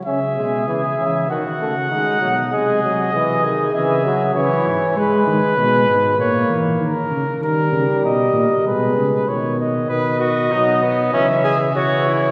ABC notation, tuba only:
X:1
M:4/4
L:1/8
Q:1/4=98
K:C#m
V:1 name="Tuba" clef=bass
C, B,, C, E, D, C, D, B,, | ^B,,2 B,,2 C,2 C, G,, | G, D, B,, G,, ^A,, E, D, C, | D, C, B,, ^A,, B,, C, B,,2 |
[K:B] B,,2 B,,2 C,4 |]